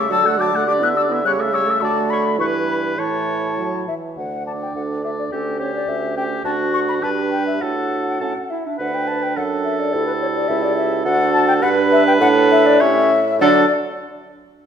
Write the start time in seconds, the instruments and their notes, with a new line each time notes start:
Already playing: bassoon C#3, oboe E5
0.10 bassoon D3, french horn F#3, clarinet F#4, oboe A5, flute E6
0.24 french horn A3, clarinet A4, oboe F#5
0.38 french horn F#3, clarinet F#4, oboe A5, flute D6
0.52 french horn A3, clarinet A4, oboe F#5
0.66 french horn D4, clarinet G4, oboe D5, flute D6
0.80 french horn B3, clarinet E4, oboe E5, flute F#6
0.94 french horn D4, clarinet G4, oboe D5, flute E6
1.09 french horn B3, clarinet E4, oboe E5
1.24 bassoon C#3, french horn G3, clarinet G4, oboe C#5, flute F#6
1.38 french horn A3, clarinet A4, oboe E5
1.52 french horn G3, clarinet G4, oboe C#5, flute E6
1.66 french horn A3, clarinet A4
1.70 oboe E5
1.80 bassoon D3, french horn A3, clarinet F#4, oboe D5, flute A5
2.10 oboe C#5, flute B5
2.38 bassoon G2, french horn E3, clarinet E4, oboe B4, flute C#6
2.68 flute B5
2.98 bassoon A2, french horn E3, clarinet E4, oboe C#5, flute A5
3.57 french horn F#3
3.88 french horn E3, flute E5
4.17 bassoon D2, flute F#5
4.46 clarinet D4, oboe D5, flute A5
4.62 flute G5
4.76 bassoon D2, french horn A4, flute F#5
5.04 clarinet D4, oboe D5, flute E5
5.19 flute D5
5.32 bassoon D2, clarinet C#4, oboe G4, french horn G4, flute A4
5.59 clarinet C#4, oboe G4, flute C#5
5.75 flute D5
5.88 bassoon D2, flute E5
6.16 clarinet C#4, oboe G4, flute G5
6.44 bassoon D2, clarinet D4, french horn F#4, oboe F#4, flute A5
6.74 flute C#6
6.89 flute B5
7.02 bassoon G2, clarinet D4, french horn G4, oboe B4, flute A5
7.31 flute G5
7.47 flute E5
7.61 bassoon A2, clarinet D4, french horn F#4, oboe A4, flute F#5
8.20 bassoon A2, clarinet C#4, oboe A4
8.50 clarinet E4, flute E5
8.66 clarinet D4
8.78 bassoon D2, clarinet D4, oboe B4, french horn B4, flute F#5
8.94 flute G5
9.08 flute A5
9.23 flute G5
9.36 bassoon F#2, french horn A4, oboe A4, flute F#5
9.65 flute E5
9.80 flute D5
9.93 bassoon D2, clarinet E4, french horn G4, flute A4
10.07 flute B4
10.21 flute C#5
10.35 flute D5
10.48 bassoon C#2, clarinet E4, flute E5
10.63 flute D5
10.76 flute E5
11.04 bassoon D2, clarinet D4, french horn F#4, oboe A4, flute F#5
11.33 flute A5
11.48 flute G5
11.62 bassoon G2, clarinet D4, french horn B4, oboe B4, flute F#5
11.92 flute E5
12.07 flute G5
12.20 bassoon A2, clarinet D4, french horn A4, flute F#5
12.51 flute E5
12.66 flute D5
12.80 bassoon A2, clarinet C#4, french horn G4, oboe C#5, flute E5
13.40 bassoon D3, french horn F#3, clarinet D4, oboe A4, flute D5